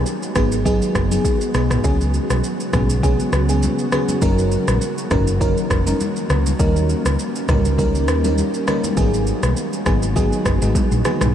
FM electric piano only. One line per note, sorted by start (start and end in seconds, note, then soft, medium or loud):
0.35 0.53 F#3 medium
0.35 0.54 B3 medium
0.35 0.54 D#4 medium
0.35 0.54 G#4 medium
0.65 1.07 F#3 medium
0.65 1.08 B3 medium
0.65 1.08 D#4 medium
0.65 1.08 G#4 loud
1.11 1.51 F#3 medium
1.11 1.51 B3 medium
1.11 1.51 D#4 medium
1.11 1.52 G#4 medium
1.54 1.82 F#3 medium
1.54 1.82 B3 medium
1.54 1.82 D#4 medium
1.54 1.82 G#4 medium
1.84 2.39 F#3 medium
1.84 2.39 B3 medium
1.84 2.39 C#4 medium
1.84 2.40 G#4 loud
2.73 2.91 F#3 medium
2.73 2.91 B3 medium
2.73 2.91 C#4 medium
2.73 2.91 G#4 medium
3.03 3.45 F#3 medium
3.03 3.45 B3 medium
3.03 3.45 C#4 medium
3.03 3.45 G#4 loud
3.49 3.89 F#3 medium
3.49 3.89 B3 medium
3.49 3.89 C#4 medium
3.49 3.89 G#4 medium
3.92 4.20 F#3 medium
3.92 4.20 B3 medium
3.92 4.20 C#4 medium
3.92 4.20 G#4 medium
4.22 4.77 F#3 medium
4.22 4.77 C#4 medium
4.22 4.77 D#4 medium
4.22 4.77 A#4 loud
5.11 5.29 F#3 medium
5.11 5.29 C#4 medium
5.11 5.29 D#4 medium
5.11 5.29 A#4 medium
5.40 5.83 F#3 medium
5.40 5.83 C#4 medium
5.40 5.83 D#4 medium
5.40 5.83 A#4 loud
5.86 6.02 F#3 medium
5.86 6.02 C#4 medium
5.86 6.02 D#4 medium
5.86 6.02 A#4 medium
6.59 7.15 G3 medium
6.59 7.15 C#4 medium
6.59 7.15 D#4 medium
6.59 7.15 A#4 loud
7.48 7.66 G3 medium
7.48 7.66 C#4 medium
7.48 7.67 D#4 medium
7.48 7.67 A#4 medium
7.78 8.20 G3 medium
7.78 8.20 C#4 medium
7.78 8.21 D#4 medium
7.78 8.21 A#4 loud
8.24 8.64 G3 medium
8.24 8.64 C#4 medium
8.24 8.64 D#4 medium
8.24 8.64 A#4 medium
8.67 8.95 G3 medium
8.67 8.95 C#4 medium
8.67 8.95 D#4 medium
8.67 8.95 A#4 medium
8.97 9.52 F#3 medium
8.97 9.52 B3 medium
8.97 9.52 D#4 medium
8.97 9.52 G#4 loud
9.86 10.04 F#3 medium
9.86 10.04 B3 medium
9.86 10.04 D#4 medium
9.86 10.04 G#4 medium
10.16 10.58 F#3 medium
10.16 10.58 B3 medium
10.16 10.58 D#4 medium
10.16 10.58 G#4 loud
10.62 11.02 F#3 medium
10.62 11.02 B3 medium
10.62 11.02 D#4 medium
10.62 11.02 G#4 medium
11.05 11.32 F#3 medium
11.05 11.33 B3 medium
11.05 11.33 D#4 medium
11.05 11.33 G#4 medium